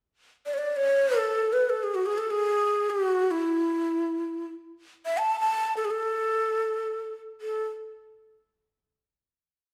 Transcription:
0.46 0.55 D5 medium
0.54 0.60 C#5 medium
0.58 0.78 D5 medium
0.76 1.19 C#5 medium
1.17 1.54 A4 medium
1.53 1.71 B4 medium
1.70 1.85 A4 medium
1.83 1.96 G#4 medium
1.95 2.07 F#4 medium
2.06 2.19 G#4 medium
2.18 2.32 A4 medium
2.31 2.92 G#4 medium
2.90 3.05 G4 medium
3.05 3.33 F#4 medium
3.31 4.47 E4 medium
5.06 5.19 E5 medium
5.18 5.39 A5 medium
5.40 5.74 A5 medium
5.77 5.86 A4 medium
5.85 5.92 G#4 medium
5.91 7.14 A4 medium
7.41 7.65 A4 medium

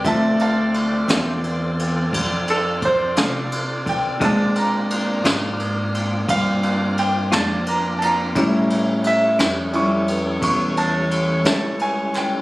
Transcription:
0.00 8.31 D4 medium
0.00 4.17 C5 medium
0.00 8.31 D5 medium
0.04 1.05 D2 medium
0.04 4.17 C4 medium
0.04 4.18 C4 medium
0.04 4.17 F4 medium
0.04 4.17 F4 soft
0.04 4.17 A4 medium
0.04 4.18 E5 medium
0.04 0.40 A5 medium
0.04 kick loud
0.04 ride medium
0.39 1.75 F5 medium
0.39 1.75 A5 medium
0.39 ride medium
0.74 ride medium
1.08 2.09 E2 loud
1.08 1.31 D3 medium
1.08 1.31 A3 medium
1.08 1.31 C4 medium
1.08 1.30 F4 medium
1.08 snare loud
1.08 ride medium
1.44 ride medium
1.79 ride medium
2.13 3.14 F2 medium
2.13 kick medium
2.13 ride medium
2.48 2.82 A4 medium
2.48 ride medium
2.82 3.17 C5 medium
2.82 kick medium
2.82 ride medium
3.16 4.18 C3 medium
3.16 3.39 D3 medium
3.16 3.39 A3 medium
3.16 3.38 C4 medium
3.16 3.38 F4 medium
3.16 3.85 F5 medium
3.16 snare loud
3.16 ride medium
3.52 ride medium
3.86 4.21 G5 medium
3.86 kick medium
3.86 ride medium
4.20 4.41 A#2 medium
4.20 5.22 A#2 medium
4.20 4.42 G#3 medium
4.20 5.21 G#3 medium
4.20 8.31 A#3 medium
4.20 6.27 A#3 medium
4.20 8.32 C4 medium
4.20 5.21 C4 soft
4.20 8.32 D4 medium
4.20 4.42 D4 medium
4.20 5.22 D4 medium
4.20 8.32 F4 medium
4.20 4.42 F4 medium
4.20 6.27 A#4 medium
4.20 kick loud
4.20 ride medium
4.25 4.56 A5 medium
4.55 5.91 A#5 medium
4.55 ride medium
4.90 ride medium
5.25 6.25 G#2 medium
5.25 5.47 A#2 medium
5.25 5.46 G#3 medium
5.25 5.46 D4 medium
5.25 5.46 F4 medium
5.25 snare loud
5.25 ride medium
5.59 ride medium
5.94 ride medium
6.28 7.29 G2 medium
6.28 8.33 C4 medium
6.28 8.33 C5 medium
6.28 6.96 F5 medium
6.28 kick medium
6.28 ride medium
6.63 ride medium
6.97 7.32 G5 medium
6.97 ride medium
7.32 8.32 F2 medium
7.32 7.54 A#2 medium
7.32 7.53 G#3 medium
7.32 7.53 D4 medium
7.32 7.53 F4 medium
7.32 7.67 A5 medium
7.32 snare loud
7.32 ride medium
7.66 8.01 A#5 medium
7.66 ride medium
7.99 8.03 A5 medium
7.99 ride medium
8.03 9.03 A#5 medium
8.34 9.36 A2 medium
8.34 8.57 A2 medium
8.34 12.42 G3 medium
8.34 9.71 G3 medium
8.34 8.57 G3 medium
8.34 12.42 A3 medium
8.34 12.42 C#4 medium
8.34 9.72 C#4 soft
8.34 8.57 C#4 medium
8.34 12.42 E4 medium
8.34 9.72 E4 medium
8.34 8.57 E4 medium
8.34 12.42 A4 medium
8.34 12.42 C#5 medium
8.34 kick loud
8.34 ride medium
8.70 ride medium
9.04 9.39 E5 medium
9.04 ride medium
9.39 10.39 F2 medium
9.39 9.61 A2 medium
9.39 9.60 G3 medium
9.39 9.60 C#4 medium
9.39 9.60 E4 medium
9.39 snare loud
9.39 ride medium
9.73 10.04 G3 soft
9.73 10.04 C#4 soft
9.73 10.05 E4 soft
9.73 10.08 C#6 medium
9.73 ride medium
10.08 ride medium
10.42 11.42 E2 medium
10.42 10.76 C#6 medium
10.42 kick medium
10.42 ride medium
10.77 11.11 A5 medium
10.77 ride medium
11.11 ride medium
11.45 12.42 C#2 medium
11.45 11.67 A2 medium
11.45 11.67 G3 medium
11.45 11.66 C#4 medium
11.45 11.66 E4 medium
11.45 11.79 A5 medium
11.45 snare loud
11.45 ride medium
11.79 12.14 G#5 medium
11.79 ride medium
12.14 12.42 G5 medium
12.14 snare soft
12.14 ride medium

